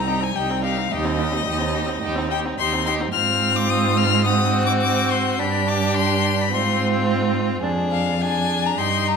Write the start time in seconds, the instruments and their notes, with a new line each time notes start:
Already playing: cello C2, violin A#5
0.07 viola D#4, violin G4
0.21 viola C4, violin D#4 G#5
0.35 cello C2, viola D#4, violin G4 G5
0.50 viola C4, violin D#4
0.63 viola D#4, violin G4 F5
0.76 viola C4, violin D#4
0.91 cello D#2, viola D#4, violin G4 D#5
1.05 viola C4, violin D#4
1.18 viola D#4, violin G4
1.31 viola C4, violin D#4
1.46 cello D#2, viola D#4, violin G4
1.59 viola C4, violin D#4
1.73 viola D#4, violin G4
1.86 viola C4, violin D#4
2.01 cello D#2, viola D#4, violin G4
2.15 viola C4, violin D#4
2.29 viola D#4, violin G4 G5
2.45 viola C4, violin D#4
2.58 cello D#2, viola D#4, violin G4 C6
2.73 viola C4, violin D#4
2.86 viola D#4, violin G4 C6
3.00 viola C4, violin D#4
3.12 cello G#2, viola C4, violin F4 F6
3.56 violin D6
3.70 violin D#6
3.97 violin F6
4.24 viola C4, violin F#4 D#6
4.66 violin D6
4.81 violin D6
5.10 violin C6
5.39 cello G2, viola D4, violin G4 B5
5.68 violin D6
5.96 violin C6
6.41 violin B5
6.51 cello G#2, viola C4, violin F4 C6
7.63 cello F2, viola D4, violin G#4
7.91 violin F5
8.20 viola D4, violin G#4 G#5
8.66 violin A#5
8.77 cello G2, viola D#4, violin G4 C6
9.08 violin A#5